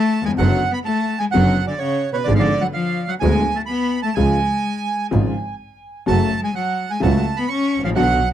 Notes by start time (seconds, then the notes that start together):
Already playing: A3 A5
0.22 D#2 G#3
0.26 E2 G#5
0.33 F2
0.37 F#1 F#2 D3 F#3 B3 C#4 F#4 F#5
0.71 B3 B5
0.83 A3 A5
1.19 G#3 G#5
1.31 F#2 D3 F#3 B3 C#4 F#4 F#5
1.35 F#1
1.67 D3 D5
1.79 C#3 C#5
2.13 B2 C#3 B4 C#5
2.24 G#1 G#2 D3 G#3 B3 G#4 D5
2.29 G#1
2.35 D3 F3 F5
2.39 D5
2.60 F#3 F#5
2.73 F3 F5
3.07 F#3 F#5
3.20 D1 D2 D3 G#3 B3 G#4 G#5
3.55 A3 A5
3.66 B3 B5
4.03 A3 A5
4.15 C#2 C#3 F3 G#3 F4 G#5
5.11 G#1 G#2 C#3 F3 G#3 F4
6.06 F#1 F#2 C#3 F#3 A3 C#4 F#4 A5
6.43 G#3 G#5
6.54 F#3 F#5
6.90 G#3 G#5
7.00 C#2 C#3 F#3 A3 C#4 F#4 A5
7.37 B3 B5
7.48 C#4 C#6
7.76 G#1 A1
7.84 A1 F3 F5
7.90 A#1
7.96 B1 B2 D3 F#3 B3 D4 F#4 F#5